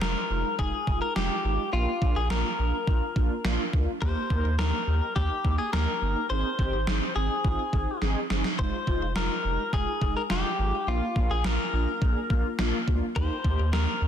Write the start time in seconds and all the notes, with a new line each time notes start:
0.01 F1 G#3 D#4 F4 A#4, snare
0.30 F1 G#3 D#4 F4
0.59 F1 G#3 D#4 F4 G#4, kick
0.87 F1 G#3 D#4 F4, kick
1.02 A#4
1.16 F1 G#3 D#4 F4 G4, snare
1.45 G#1 G#3 D#4 F4
1.73 A#1 A#3 D4 F4
2.02 A#1 A#3 D4 F4, kick
2.16 A#1 G#4
2.30 A#1 A#3 D4 F4 A#4, snare
2.59 A#1 A#3 D4 F4
2.87 A#1 A#3 D4 F4, kick
3.16 A#1 A#3 D4 F4, kick
3.45 A#1 A#3 D4 F4, snare
3.73 D2 A#3 D4 F4, kick
4.02 D#2 A#3 D#4 G4 C5, kick
4.30 D#2 A#3 D#4 A#4, kick
4.45 D#2
4.59 D#2 A#3 D#4 G4 A#4, snare
4.87 D#2 A#3 D#4 G4
5.16 D#2 A#3 D#4 G4, kick
5.45 D#2 A#3 D#4 G4, kick
5.58 G#4
5.73 D#2 A#3 D#4 G4 A#4, snare
6.02 G1 A#3 D#4 G4
6.30 G#1 C4 D#4 G#4 C5
6.59 G#1 C4 D#4 G4, kick
6.73 G#1
6.87 G#1 C4 D#4 G#4, snare
7.16 G#1 C4 D#4 G#4
7.44 G#1 C4 D#4 F4, kick
7.73 G#1 C4 D#4 G#4, kick
8.01 G#1 C4 D#4 G#4, snare
8.30 G1 C4 D#4 G#4, snare
8.44 snare
8.59 F1 G#3 D#4 F4 C5, kick
8.87 F1 G#3 D#4 F4, kick
9.02 F1
9.16 F1 G#3 D#4 F4 A#4, snare
9.44 F1 G#3 D#4 G4
9.73 F1 G#3 D#4 F4 G#4, kick
10.01 F1 G#3 D#4 G#4, kick
10.17 A#4
10.30 F1 G#3 D#4 F4 G4, snare
10.59 G#1 G#3 D#4 F4
10.87 A#1 A#3 D4 F4
11.16 A#1 A#3 D4 F4, kick
11.30 A#1 G#4
11.44 A#1 A#3 D4 F4 A#4, snare
11.73 A#1 A#3 D4 F4
12.02 A#1 A#3 D4 G#4, kick
12.30 A#1 A#3 D4 F4, kick
12.59 A#1 A#3 D4 F4, snare
12.88 D2 A#3 D4 F4, kick
13.16 D#2 A#3 D#4 G4 C5, kick
13.44 D#2 A#3 D#4 G4, kick
13.59 D#2
13.73 D#2 A#3 D#4 G4 A#4, snare
14.02 D#2 A#3 D#4 G4